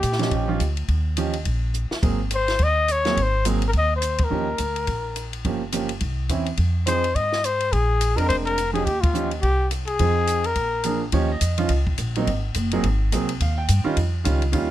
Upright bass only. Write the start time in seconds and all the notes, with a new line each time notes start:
0.03 A#2
0.32 A#1
0.60 D2
0.89 D#2
1.46 A#1
1.91 muted upright bass stroke
2.03 G#1
2.59 D#2
3.17 G#1
3.74 D#2
4.31 D#2
4.59 D2
4.88 A#1
5.45 G1
6.01 C2
6.28 E2
6.58 F2
7.15 G#2
7.72 A#1
8.17 F2
8.29 F1
8.87 D#2
9.43 C2
10.00 F2
10.56 A#1
11.12 D#2
11.41 F2
11.69 C#2
11.98 A#1
12.27 G#1
12.56 F#1
12.84 G#1
13.12 C2
13.40 D#2
13.69 G2
13.86 muted upright bass stroke
13.97 F2
14.25 C#2
14.54 D#2